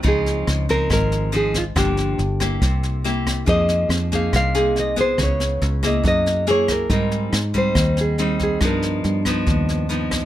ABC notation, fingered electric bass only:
X:1
M:4/4
L:1/8
Q:1/4=140
K:Dblyd
V:1 name="Fingered electric bass" clef=bass
D,,2 D,,2 A,,,4 | G,,,2 G,,,2 C,,4 | F,,2 F,,2 C,,4 | D,,2 D,,2 _G,,4 |
A,,2 A,,2 E,,4 | G,,2 G,,2 ^D,,4 |]